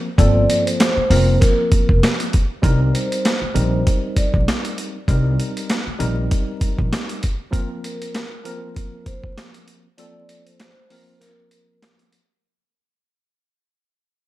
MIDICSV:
0, 0, Header, 1, 6, 480
1, 0, Start_track
1, 0, Tempo, 612245
1, 143, Time_signature, 4, 2, 24, 8
1, 11189, End_track
2, 0, Start_track
2, 0, Title_t, "Vibraphone"
2, 0, Program_c, 0, 11
2, 139, Note_on_c, 0, 74, 109
2, 493, Note_off_c, 0, 74, 0
2, 513, Note_on_c, 0, 72, 85
2, 1070, Note_off_c, 0, 72, 0
2, 1090, Note_on_c, 0, 70, 92
2, 1312, Note_off_c, 0, 70, 0
2, 1350, Note_on_c, 0, 70, 79
2, 1563, Note_off_c, 0, 70, 0
2, 2299, Note_on_c, 0, 72, 75
2, 3230, Note_off_c, 0, 72, 0
2, 3268, Note_on_c, 0, 74, 73
2, 3482, Note_off_c, 0, 74, 0
2, 6151, Note_on_c, 0, 70, 79
2, 7076, Note_off_c, 0, 70, 0
2, 7104, Note_on_c, 0, 72, 74
2, 7320, Note_off_c, 0, 72, 0
2, 7821, Note_on_c, 0, 74, 108
2, 8174, Note_off_c, 0, 74, 0
2, 8195, Note_on_c, 0, 72, 82
2, 8751, Note_off_c, 0, 72, 0
2, 8770, Note_on_c, 0, 70, 94
2, 8992, Note_off_c, 0, 70, 0
2, 9030, Note_on_c, 0, 70, 83
2, 9243, Note_off_c, 0, 70, 0
2, 11189, End_track
3, 0, Start_track
3, 0, Title_t, "Tine electric piano"
3, 0, Program_c, 1, 4
3, 140, Note_on_c, 1, 53, 101
3, 143, Note_on_c, 1, 58, 88
3, 147, Note_on_c, 1, 60, 90
3, 150, Note_on_c, 1, 69, 98
3, 703, Note_off_c, 1, 53, 0
3, 704, Note_off_c, 1, 58, 0
3, 706, Note_off_c, 1, 60, 0
3, 707, Note_off_c, 1, 69, 0
3, 863, Note_on_c, 1, 53, 92
3, 867, Note_on_c, 1, 58, 90
3, 870, Note_on_c, 1, 60, 88
3, 872, Note_on_c, 1, 70, 96
3, 1861, Note_off_c, 1, 53, 0
3, 1863, Note_off_c, 1, 58, 0
3, 1864, Note_off_c, 1, 60, 0
3, 1866, Note_off_c, 1, 70, 0
3, 2054, Note_on_c, 1, 55, 90
3, 2058, Note_on_c, 1, 60, 85
3, 2061, Note_on_c, 1, 63, 80
3, 2064, Note_on_c, 1, 70, 111
3, 2620, Note_off_c, 1, 55, 0
3, 2621, Note_off_c, 1, 60, 0
3, 2623, Note_off_c, 1, 63, 0
3, 2624, Note_off_c, 1, 70, 0
3, 2774, Note_on_c, 1, 55, 93
3, 2775, Note_on_c, 1, 60, 87
3, 2778, Note_on_c, 1, 63, 89
3, 2782, Note_on_c, 1, 70, 96
3, 3894, Note_off_c, 1, 55, 0
3, 3895, Note_off_c, 1, 60, 0
3, 3896, Note_off_c, 1, 63, 0
3, 3898, Note_off_c, 1, 70, 0
3, 3982, Note_on_c, 1, 55, 94
3, 3985, Note_on_c, 1, 60, 87
3, 3988, Note_on_c, 1, 63, 89
3, 3992, Note_on_c, 1, 70, 106
3, 4543, Note_off_c, 1, 55, 0
3, 4545, Note_off_c, 1, 60, 0
3, 4547, Note_off_c, 1, 63, 0
3, 4548, Note_off_c, 1, 70, 0
3, 4692, Note_on_c, 1, 55, 94
3, 4695, Note_on_c, 1, 60, 84
3, 4697, Note_on_c, 1, 63, 94
3, 4702, Note_on_c, 1, 70, 105
3, 5695, Note_off_c, 1, 55, 0
3, 5697, Note_off_c, 1, 60, 0
3, 5698, Note_off_c, 1, 63, 0
3, 5700, Note_off_c, 1, 70, 0
3, 5886, Note_on_c, 1, 53, 91
3, 5890, Note_on_c, 1, 58, 87
3, 5894, Note_on_c, 1, 60, 90
3, 5896, Note_on_c, 1, 70, 100
3, 6455, Note_off_c, 1, 53, 0
3, 6457, Note_off_c, 1, 58, 0
3, 6459, Note_off_c, 1, 60, 0
3, 6460, Note_off_c, 1, 70, 0
3, 6621, Note_on_c, 1, 53, 95
3, 6624, Note_on_c, 1, 58, 89
3, 6629, Note_on_c, 1, 60, 87
3, 6630, Note_on_c, 1, 70, 113
3, 7738, Note_off_c, 1, 53, 0
3, 7739, Note_off_c, 1, 58, 0
3, 7742, Note_off_c, 1, 60, 0
3, 7742, Note_off_c, 1, 70, 0
3, 7825, Note_on_c, 1, 53, 100
3, 7828, Note_on_c, 1, 58, 84
3, 7832, Note_on_c, 1, 60, 91
3, 7834, Note_on_c, 1, 69, 100
3, 8385, Note_off_c, 1, 53, 0
3, 8386, Note_off_c, 1, 58, 0
3, 8388, Note_off_c, 1, 60, 0
3, 8390, Note_off_c, 1, 69, 0
3, 8545, Note_on_c, 1, 53, 97
3, 8548, Note_on_c, 1, 58, 92
3, 8551, Note_on_c, 1, 60, 89
3, 8556, Note_on_c, 1, 70, 98
3, 9542, Note_off_c, 1, 53, 0
3, 9544, Note_off_c, 1, 58, 0
3, 9545, Note_off_c, 1, 60, 0
3, 9547, Note_off_c, 1, 70, 0
3, 11189, End_track
4, 0, Start_track
4, 0, Title_t, "Upright bass"
4, 0, Program_c, 2, 32
4, 143, Note_on_c, 2, 31, 106
4, 352, Note_off_c, 2, 31, 0
4, 865, Note_on_c, 2, 29, 97
4, 1073, Note_off_c, 2, 29, 0
4, 1482, Note_on_c, 2, 29, 89
4, 1572, Note_off_c, 2, 29, 0
4, 2064, Note_on_c, 2, 36, 110
4, 2273, Note_off_c, 2, 36, 0
4, 2784, Note_on_c, 2, 34, 96
4, 2993, Note_off_c, 2, 34, 0
4, 3402, Note_on_c, 2, 34, 90
4, 3492, Note_off_c, 2, 34, 0
4, 3983, Note_on_c, 2, 36, 113
4, 4192, Note_off_c, 2, 36, 0
4, 4704, Note_on_c, 2, 34, 94
4, 4913, Note_off_c, 2, 34, 0
4, 5321, Note_on_c, 2, 34, 96
4, 5412, Note_off_c, 2, 34, 0
4, 11189, End_track
5, 0, Start_track
5, 0, Title_t, "Muted upright bass strokes"
5, 759, Note_on_c, 9, 29, 53
5, 837, Note_off_c, 9, 29, 0
5, 2679, Note_on_c, 9, 29, 50
5, 2758, Note_off_c, 9, 29, 0
5, 4599, Note_on_c, 9, 29, 51
5, 4677, Note_off_c, 9, 29, 0
5, 11189, End_track
6, 0, Start_track
6, 0, Title_t, "Drums"
6, 143, Note_on_c, 9, 36, 119
6, 147, Note_on_c, 9, 42, 88
6, 221, Note_off_c, 9, 36, 0
6, 226, Note_off_c, 9, 42, 0
6, 389, Note_on_c, 9, 42, 73
6, 467, Note_off_c, 9, 42, 0
6, 527, Note_on_c, 9, 42, 57
6, 605, Note_off_c, 9, 42, 0
6, 628, Note_on_c, 9, 42, 103
6, 631, Note_on_c, 9, 38, 109
6, 638, Note_on_c, 9, 40, 88
6, 706, Note_off_c, 9, 42, 0
6, 709, Note_off_c, 9, 38, 0
6, 717, Note_off_c, 9, 40, 0
6, 868, Note_on_c, 9, 46, 60
6, 946, Note_off_c, 9, 46, 0
6, 1108, Note_on_c, 9, 38, 40
6, 1112, Note_on_c, 9, 42, 97
6, 1113, Note_on_c, 9, 36, 104
6, 1187, Note_off_c, 9, 38, 0
6, 1191, Note_off_c, 9, 36, 0
6, 1191, Note_off_c, 9, 42, 0
6, 1345, Note_on_c, 9, 42, 80
6, 1346, Note_on_c, 9, 36, 94
6, 1424, Note_off_c, 9, 36, 0
6, 1424, Note_off_c, 9, 42, 0
6, 1481, Note_on_c, 9, 36, 100
6, 1560, Note_off_c, 9, 36, 0
6, 1593, Note_on_c, 9, 38, 122
6, 1595, Note_on_c, 9, 42, 92
6, 1601, Note_on_c, 9, 40, 99
6, 1672, Note_off_c, 9, 38, 0
6, 1673, Note_off_c, 9, 42, 0
6, 1679, Note_off_c, 9, 40, 0
6, 1724, Note_on_c, 9, 42, 55
6, 1803, Note_off_c, 9, 42, 0
6, 1829, Note_on_c, 9, 42, 77
6, 1835, Note_on_c, 9, 36, 92
6, 1907, Note_off_c, 9, 42, 0
6, 1913, Note_off_c, 9, 36, 0
6, 2063, Note_on_c, 9, 36, 116
6, 2068, Note_on_c, 9, 42, 88
6, 2142, Note_off_c, 9, 36, 0
6, 2147, Note_off_c, 9, 42, 0
6, 2312, Note_on_c, 9, 42, 76
6, 2390, Note_off_c, 9, 42, 0
6, 2447, Note_on_c, 9, 42, 58
6, 2526, Note_off_c, 9, 42, 0
6, 2549, Note_on_c, 9, 42, 100
6, 2552, Note_on_c, 9, 38, 104
6, 2559, Note_on_c, 9, 40, 84
6, 2627, Note_off_c, 9, 42, 0
6, 2630, Note_off_c, 9, 38, 0
6, 2638, Note_off_c, 9, 40, 0
6, 2788, Note_on_c, 9, 42, 82
6, 2867, Note_off_c, 9, 42, 0
6, 3032, Note_on_c, 9, 36, 109
6, 3032, Note_on_c, 9, 42, 97
6, 3110, Note_off_c, 9, 42, 0
6, 3111, Note_off_c, 9, 36, 0
6, 3265, Note_on_c, 9, 36, 92
6, 3265, Note_on_c, 9, 42, 83
6, 3343, Note_off_c, 9, 42, 0
6, 3344, Note_off_c, 9, 36, 0
6, 3401, Note_on_c, 9, 36, 100
6, 3480, Note_off_c, 9, 36, 0
6, 3514, Note_on_c, 9, 38, 119
6, 3515, Note_on_c, 9, 42, 94
6, 3522, Note_on_c, 9, 40, 97
6, 3592, Note_off_c, 9, 38, 0
6, 3594, Note_off_c, 9, 42, 0
6, 3600, Note_off_c, 9, 40, 0
6, 3645, Note_on_c, 9, 42, 55
6, 3723, Note_off_c, 9, 42, 0
6, 3748, Note_on_c, 9, 42, 79
6, 3826, Note_off_c, 9, 42, 0
6, 3983, Note_on_c, 9, 36, 122
6, 3988, Note_on_c, 9, 42, 89
6, 4061, Note_off_c, 9, 36, 0
6, 4067, Note_off_c, 9, 42, 0
6, 4230, Note_on_c, 9, 42, 73
6, 4308, Note_off_c, 9, 42, 0
6, 4366, Note_on_c, 9, 42, 57
6, 4444, Note_off_c, 9, 42, 0
6, 4465, Note_on_c, 9, 42, 103
6, 4468, Note_on_c, 9, 38, 109
6, 4475, Note_on_c, 9, 40, 83
6, 4543, Note_off_c, 9, 42, 0
6, 4546, Note_off_c, 9, 38, 0
6, 4554, Note_off_c, 9, 40, 0
6, 4705, Note_on_c, 9, 42, 83
6, 4783, Note_off_c, 9, 42, 0
6, 4949, Note_on_c, 9, 42, 100
6, 4951, Note_on_c, 9, 36, 107
6, 5028, Note_off_c, 9, 42, 0
6, 5029, Note_off_c, 9, 36, 0
6, 5184, Note_on_c, 9, 36, 92
6, 5184, Note_on_c, 9, 42, 83
6, 5262, Note_off_c, 9, 42, 0
6, 5263, Note_off_c, 9, 36, 0
6, 5320, Note_on_c, 9, 36, 96
6, 5398, Note_off_c, 9, 36, 0
6, 5430, Note_on_c, 9, 38, 119
6, 5432, Note_on_c, 9, 42, 93
6, 5438, Note_on_c, 9, 40, 100
6, 5508, Note_off_c, 9, 38, 0
6, 5510, Note_off_c, 9, 42, 0
6, 5516, Note_off_c, 9, 40, 0
6, 5561, Note_on_c, 9, 42, 57
6, 5640, Note_off_c, 9, 42, 0
6, 5666, Note_on_c, 9, 42, 81
6, 5674, Note_on_c, 9, 36, 93
6, 5745, Note_off_c, 9, 42, 0
6, 5752, Note_off_c, 9, 36, 0
6, 5902, Note_on_c, 9, 36, 119
6, 5906, Note_on_c, 9, 42, 87
6, 5980, Note_off_c, 9, 36, 0
6, 5984, Note_off_c, 9, 42, 0
6, 6149, Note_on_c, 9, 42, 75
6, 6227, Note_off_c, 9, 42, 0
6, 6285, Note_on_c, 9, 42, 59
6, 6364, Note_off_c, 9, 42, 0
6, 6386, Note_on_c, 9, 42, 101
6, 6389, Note_on_c, 9, 38, 108
6, 6397, Note_on_c, 9, 40, 85
6, 6465, Note_off_c, 9, 42, 0
6, 6467, Note_off_c, 9, 38, 0
6, 6475, Note_off_c, 9, 40, 0
6, 6628, Note_on_c, 9, 42, 82
6, 6706, Note_off_c, 9, 42, 0
6, 6871, Note_on_c, 9, 42, 97
6, 6872, Note_on_c, 9, 36, 105
6, 6949, Note_off_c, 9, 42, 0
6, 6950, Note_off_c, 9, 36, 0
6, 7104, Note_on_c, 9, 42, 85
6, 7105, Note_on_c, 9, 36, 95
6, 7182, Note_off_c, 9, 42, 0
6, 7183, Note_off_c, 9, 36, 0
6, 7240, Note_on_c, 9, 36, 96
6, 7319, Note_off_c, 9, 36, 0
6, 7350, Note_on_c, 9, 38, 125
6, 7352, Note_on_c, 9, 42, 93
6, 7358, Note_on_c, 9, 40, 99
6, 7428, Note_off_c, 9, 38, 0
6, 7430, Note_off_c, 9, 42, 0
6, 7436, Note_off_c, 9, 40, 0
6, 7482, Note_on_c, 9, 42, 55
6, 7560, Note_off_c, 9, 42, 0
6, 7586, Note_on_c, 9, 42, 80
6, 7664, Note_off_c, 9, 42, 0
6, 7826, Note_on_c, 9, 42, 92
6, 7904, Note_off_c, 9, 42, 0
6, 8068, Note_on_c, 9, 42, 74
6, 8146, Note_off_c, 9, 42, 0
6, 8205, Note_on_c, 9, 42, 58
6, 8284, Note_off_c, 9, 42, 0
6, 8307, Note_on_c, 9, 42, 103
6, 8310, Note_on_c, 9, 38, 104
6, 8318, Note_on_c, 9, 40, 86
6, 8385, Note_off_c, 9, 42, 0
6, 8388, Note_off_c, 9, 38, 0
6, 8396, Note_off_c, 9, 40, 0
6, 8548, Note_on_c, 9, 46, 58
6, 8627, Note_off_c, 9, 46, 0
6, 8788, Note_on_c, 9, 38, 41
6, 8792, Note_on_c, 9, 42, 100
6, 8867, Note_off_c, 9, 38, 0
6, 8870, Note_off_c, 9, 42, 0
6, 9025, Note_on_c, 9, 42, 83
6, 9104, Note_off_c, 9, 42, 0
6, 9271, Note_on_c, 9, 38, 126
6, 9273, Note_on_c, 9, 42, 93
6, 9279, Note_on_c, 9, 40, 97
6, 9350, Note_off_c, 9, 38, 0
6, 9351, Note_off_c, 9, 42, 0
6, 9357, Note_off_c, 9, 40, 0
6, 9403, Note_on_c, 9, 42, 55
6, 9481, Note_off_c, 9, 42, 0
6, 9506, Note_on_c, 9, 42, 79
6, 9585, Note_off_c, 9, 42, 0
6, 11189, End_track
0, 0, End_of_file